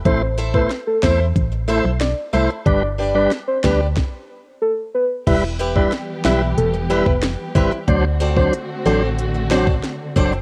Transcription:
<<
  \new Staff \with { instrumentName = "Soft synth lead" } { \time 4/4 \key e \phrygian \tempo 4 = 92 c''8 r16 b'16 r16 a'16 c''16 r4 r16 d''16 r16 e''16 r16 | d''8 r16 d''16 r16 c''16 b'16 r4 r16 a'16 r16 b'16 r16 | e''16 r8 d''16 r8 e''16 r16 a'16 r8 b'16 r8 c''16 r16 | d''16 r8 c''16 r8 a'16 r2 r16 | }
  \new Staff \with { instrumentName = "Steel-string acoustic guitar" } { \time 4/4 \key e \phrygian r8 <e' a' c'' e''>8 r8 <e' a' c'' e''>8 r8 <e' a' c'' e''>8 r8 <e' a' c'' e''>8 | r8 <d' g' b' d''>8 r8 <d' g' b' d''>8 r2 | r8 <e' g' b' e''>8 r8 <e' g' b' e''>8 r8 <e' g' b' e''>8 r8 <e' g' b' e''>8 | r8 <c' fis' a' d''>8 r8 <c' fis' a' d''>8 r8 <c' fis' a' d''>8 r8 <c' fis' a' d''>8 | }
  \new Staff \with { instrumentName = "Tonewheel organ" } { \time 4/4 \key e \phrygian <a e' c''>16 r8 <a e' c''>16 r8 <a e' c''>16 r8. <a e' c''>16 r8. <a e' c''>16 r16 | <g d' b'>16 r8 <g d' b'>16 r8 <g d' b'>16 r2 r16 | <g e' b'>16 r8 <g e' b'>16 r8 <g e' b'>16 r8. <g e' b'>16 r8. <g e' b'>16 r16 | <fis d' c''>16 r8 <fis d' c''>16 r8 <fis d' c''>16 r8. <fis d' c''>16 r8. <fis d' c''>16 r16 | }
  \new Staff \with { instrumentName = "String section" } { \time 4/4 \key e \phrygian r1 | r1 | <e g b g'>1 | <d a c' fis'>1 | }
  \new Staff \with { instrumentName = "FM bass" } { \clef bass \time 4/4 \key e \phrygian a,,4 r8 e,8 a,,8. b,,8 r16 c,16 r16 | g,,4 r8 d,8 r2 | e,,4 r8 b,,8 e,,8. f,,8 r16 g,,16 r16 | d,4 r8 a,,4. r8 fis,,8 | }
  \new DrumStaff \with { instrumentName = "Drums" } \drummode { \time 4/4 <hh bd>8. bd16 <hh sn>8 <bd sn>8 <hh bd>4 <hh sn>4 | <hh bd>4 <hh sn>8 <bd sn>8 <bd sn>4 r4 | <cymc hh bd>8. bd16 <hh sn>8 sn8 hh8. bd16 <hh sn>8 bd8 | <hh bd>8. bd16 hh4 hh8 sn16 bd16 <hh sn>8 bd8 | }
>>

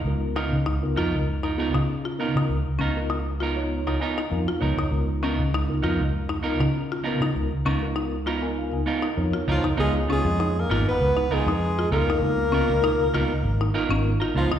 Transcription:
<<
  \new Staff \with { instrumentName = "Alto saxophone" } { \time 4/4 \key des \mixolydian \tempo 4 = 99 r1 | r1 | r1 | r2. r8 f'8 |
aes'8 aes'8. bes'8 ces''8. aes'4 bes'8~ | bes'2~ bes'8 r4 f'8 | }
  \new Staff \with { instrumentName = "Tine electric piano" } { \time 4/4 \key des \mixolydian << { r1 | r2 r8 aes''8 f''8 des''8 | r1 | r4. bes''16 aes''16 f''16 aes''16 f''16 ees''16 des''16 des''8. |
r1 | r1 | } \\ { <ces' ees' f' bes'>8. r8 <ces' ees' f' bes'>8. r8 <ces' ees' f' aes'>8 r8 <ces' ees' f' bes'>8~ | <ces' ees' f' bes'>16 r8 <ces' ees' f' bes'>8 r8 <ces' ees' f' des''>8. r8 <ces' ees' f' bes'>8 r8 | <ces' ees' f' bes'>8. r8 <ces' ees' f' bes'>8. r8 <ces' ees' f' bes'>8 r8 <ces' ees' f' bes'>8~ | <ces' ees' f' bes'>16 r8 <ces' ees' f' bes'>8 r8 <ces' ees' f' bes'>8. r8 <ces' ees' f' bes'>8 r8 |
<ces' ees' f' bes'>16 <ces' ees' f' des''>4 r2 r8. | <ces' ees' f' bes'>16 r16 <ces' ees' f' bes'>16 r16 <ces ees' f' bes'>8. r8. <ces' ees' f' bes'>16 <ces' ees' f' bes'>8. r8 | } >> }
  \new Staff \with { instrumentName = "Clean electric guitar" } { \time 4/4 \key des \mixolydian r8 <ces' ees' f' bes'>16 r8. <ces' ees' f' bes'>16 r8 <ees' f' bes'>16 <ces' ees' f' bes'>16 r8. <ces' ees' f' bes'>16 r16 | r8 <ces' ees' f' bes'>16 r8. <ces' ees' f' bes'>16 r8 <ees' f' bes'>16 <ces' ees' f' bes'>16 r8. <ces' ees' bes'>16 r16 | r8 <ces' ees' f' bes'>16 r8. <ces' ees' f' bes'>16 r8. <ces' ees' f' bes'>16 r8. <ces' ees' f' bes'>16 r16 | r8 <ces' ees' f' bes'>16 r8. <ces' ees' f' bes'>16 r8. <ces' ees' f' bes'>16 r8. <ces' ees' f' bes'>16 r16 |
<ces' ees' f'>16 r16 <ces' f'>16 r8. <ces' ees' f' bes'>16 r8. <ces' ees' f' bes'>16 r8. <ces' ees' f' bes'>16 r16 | r8 <ces' ees' f' bes'>16 r8. <ces' ees' f' bes'>16 r8. <ces' ees' f' bes'>16 r8 <ees' f' bes'>16 <ces' ees' bes'>16 r16 | }
  \new Staff \with { instrumentName = "Marimba" } { \time 4/4 \key des \mixolydian r8 ees'8 ees'8 f'8 r16 ees'8 ees'8 f'8 ees'16 | r8 des'8 ees'8 f'8 r16 ees'8 ees'8 f'8 ees'16 | r8 des'8 ees'8 f'8 r16 ees'8 ees'8 f'8 ees'16 | r8 des'8 ees'8 f'8 r16 ees'8 ees'8 f'8 ees'16 |
r8 des'8 ees'8 f'8 r16 ees'8 ees'8 f'8 ees'16 | r8 des'8 ees'8 f'8 r16 ees'8 des'8 f'8 ees'16 | }
  \new Staff \with { instrumentName = "Trombone" } { \clef bass \time 4/4 \key des \mixolydian r1 | r1 | r1 | r2. r8 f8 |
aes8 aes8. bes8 ces'8. aes4 bes8~ | bes2~ bes8 r4 f8 | }
  \new Staff \with { instrumentName = "Fingered electric bass" } { \clef bass \time 4/4 \key des \mixolydian des,8. des16 des,16 r16 f,16 des,4 des4 des16 | des,16 r16 des,2 r8 f,16 r16 des,16 r16 | des,8. des16 des,16 r16 f,16 des,4 des4 des16 | des,16 r16 des,2 r8 f,16 r16 des,16 r16 |
des,8 r16 f,8. aes,,16 r16 des,8 r16 f,8. des,8 | des,8 r16 des,8 r16 des,16 r16 aes,,8 r16 aes,,8 r16 des,16 r16 | }
>>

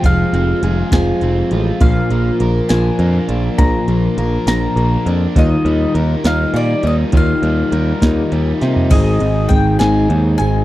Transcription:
<<
  \new Staff \with { instrumentName = "Mandolin" } { \time 6/8 \key ees \major \tempo 4. = 67 f''4. aes''4 r8 | f''4 r8 aes''4. | bes''4. bes''4 r8 | ees''4 r8 f''8 d''8 ees''8 |
f''2~ f''8 r8 | ees''4 g''8 aes''4 aes''8 | }
  \new Staff \with { instrumentName = "Overdriven electric guitar" } { \time 6/8 \key ees \major <f c' f' aes'>8 c'8 aes'8 f'8 c'8 f'8 | bes,8 bes8 bes'8 d'8 bes8 d'8 | bes,8 bes8 bes'8 d'8 bes8 d'8 | ees8 g8 bes'8 ees'8 g8 ees'8 |
ees8 g8 bes'8 ees'8 g8 ees'8 | <aes, ees aes c' ees' aes'>4. <aes, ees aes c' ees' aes'>4. | }
  \new Staff \with { instrumentName = "Steel-string acoustic guitar" } { \time 6/8 \key ees \major <f, c f aes c' f'>4 <f aes c' f'>8 <f, c f aes c' f'>4 <f aes c' f'>8 | <bes, f bes d' f'>4 <f bes d' f'>8 <bes, f bes d' f'>4 <bes d' f'>8 | <bes, f bes d' f'>4 <f bes d' f'>8 <bes, f bes d' f'>4 <bes d' f'>8 | <ees g bes ees' f'>4 <g bes ees' f'>8 <ees g bes ees' f'>4 <bes ees' f'>8 |
<ees g bes ees' f'>4 <g bes ees' f'>8 <ees g bes ees' f'>4 <bes ees' f'>8 | <aes, ees aes c' ees' aes'>8 <aes c' ees' aes'>8 <aes c' ees' aes'>8 <aes, ees aes c' ees' aes'>8 <aes c' ees' aes'>8 <aes c' ees' aes'>8 | }
  \new Staff \with { instrumentName = "Picked electric bass" } { \clef bass \time 6/8 \key ees \major f,,8 f,,8 f,,8 f,,8 f,,8 a,,8 | bes,,8 bes,,8 bes,,8 bes,,8 f,8 bes,,8 | bes,,8 bes,,8 bes,,8 bes,,8 bes,,8 f,8 | ees,8 ees,8 ees,8 ees,8 bes,8 ees,8 |
ees,8 ees,8 ees,8 ees,8 ees,8 c8 | aes,,8 aes,,8 aes,,8 aes,,8 ees,8 aes,,8 | }
  \new DrumStaff \with { instrumentName = "Drums" } \drummode { \time 6/8 <hh bd>8 hh8 hh8 <hh bd sn>8 hh8 hh8 | <hh bd>8 hh8 hh8 <hh sn>8 hh8 hh8 | <hh bd>8 hh8 hh8 <hh sn>8 hh8 hh8 | <hh bd>8 hh8 hh8 <hh sn>8 hh8 hh8 |
<hh bd>8 hh8 hh8 <hh bd sn>8 hh8 <hh sn>16 tomfh16 | <cymc hh bd>8 hh8 <hh bd>8 <hh sn>8 hh8 hh8 | }
>>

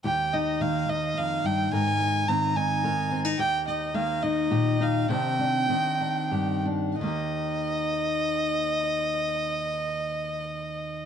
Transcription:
<<
  \new Staff \with { instrumentName = "Fiddle" } { \time 6/8 \key ees \major \tempo 4. = 68 g''8 ees''8 f''8 ees''8 f''8 g''8 | aes''4 bes''8 aes''4 r8 | g''8 ees''8 f''8 ees''4 f''8 | g''2~ g''8 r8 |
ees''2.~ | ees''2. | }
  \new Staff \with { instrumentName = "Steel-string acoustic guitar" } { \time 6/8 \key ees \major << { g'8 ees'8 bes2 | bes'8 ees'8 c'8 ees'8 bes'8 c'16 ees'16 | g'8 ees'8 bes8 ees'8 g'8 ees'8 | <ees c' d' g'>8 d'8 c'8 d'8 g'8 d'8 |
<ees bes ees' g'>2.~ | <ees bes ees' g'>2. | } \\ { ees,4 ees8 ees,8 f,8 g,8 | aes,4 ees4 ees4 | ees,4 ees4 bes,4 | c4 ees4 g,4 |
ees,2.~ | ees,2. | } >> }
>>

